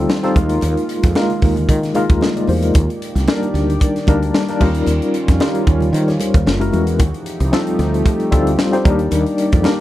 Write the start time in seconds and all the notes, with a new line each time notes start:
Already playing: D#3 G3 A3 C4 D#4 F4 A4
0.09 snare, high conga
0.23 G3 C4 D#4 F4 A4, snare, closed hi-hat
0.34 D#2 G#3 A#3 D#4 F4 A#4, kick, closed hi-hat, high conga
0.49 closed hi-hat
0.61 D#2, closed hi-hat, muted conga
0.77 closed hi-hat
0.89 closed hi-hat
1.03 F2, kick, snare, closed hi-hat
1.15 G#3 A#3 D#4 F4 A#4, snare, high conga
1.30 closed hi-hat
1.42 D#2, kick, open hi-hat
1.56 closed hi-hat, low conga
1.69 D#3, kick, closed hi-hat
1.83 snare, closed hi-hat
1.95 G#3 A#3 D#4 F4 A#4, closed hi-hat, muted conga
2.10 D#2, kick, closed hi-hat
2.21 A#4 D#5, snare, high conga
2.37 G#4 D5, closed hi-hat
2.48 E2 G4 C5, open hi-hat, high conga
2.62 F4 A#4, closed hi-hat
2.74 D#2 G4 D5, kick, closed hi-hat, muted conga
2.90 closed hi-hat
3.02 closed hi-hat
3.15 C2, snare, closed hi-hat
3.28 G3 A#3 D4 D#4 A#4, snare, high conga
3.43 closed hi-hat
3.54 D2, snare, closed hi-hat
3.70 closed hi-hat
3.80 kick, closed hi-hat, muted conga
3.96 snare, closed hi-hat
4.07 D2 G3 A#3 D4 D#4 A#4, kick, closed hi-hat, muted conga, low conga
4.23 closed hi-hat
4.34 snare, high conga
4.48 G3 A#3 D4 D#4 A#4, snare, closed hi-hat
4.60 D#2 G3 C#4 D#4 F4 A#4, kick, crash, high conga
4.75 closed hi-hat
4.87 D#2, closed hi-hat, muted conga
5.02 closed hi-hat
5.14 closed hi-hat
5.28 F2, kick, snare, closed hi-hat
5.40 G3 C#4 D#4 F4 A#4, snare, high conga
5.55 closed hi-hat
5.67 D#2, kick, closed hi-hat
5.80 closed hi-hat, low conga
5.93 D#3 G4 C5, closed hi-hat, muted conga
6.08 G4 C#5, snare, closed hi-hat
6.20 closed hi-hat, muted conga
6.34 D#2 F4 A#4, kick, closed hi-hat
6.46 F#1, snare, high conga
6.59 G#3 C#4 E4 F#4 A#4, closed hi-hat
6.72 E2, closed hi-hat, high conga
6.87 closed hi-hat
6.99 D#2 F3 A3 D#4 G4, kick, closed hi-hat, muted conga
7.14 closed hi-hat
7.26 closed hi-hat
7.40 C2, closed hi-hat
7.52 G3 C4 D#4 F4 A4, snare, high conga
7.67 closed hi-hat
7.79 D2, snare, closed hi-hat
7.94 closed hi-hat
8.06 kick, closed hi-hat
8.20 closed hi-hat
8.31 D2 G3 C4 D#4 F4 A4, kick, closed hi-hat, muted conga, low conga
8.47 closed hi-hat
8.58 snare, high conga
8.72 G3 C4 D#4 F4 C5, snare, closed hi-hat
8.84 D#2 D#3 G3 A#3 D4 D#4 A#4 D5, kick, closed hi-hat, high conga
8.99 closed hi-hat
9.11 D#2, closed hi-hat, muted conga
9.27 closed hi-hat
9.38 closed hi-hat
9.52 F2, kick, closed hi-hat
9.63 G3 A#3 D4 D#4 A#4, snare, high conga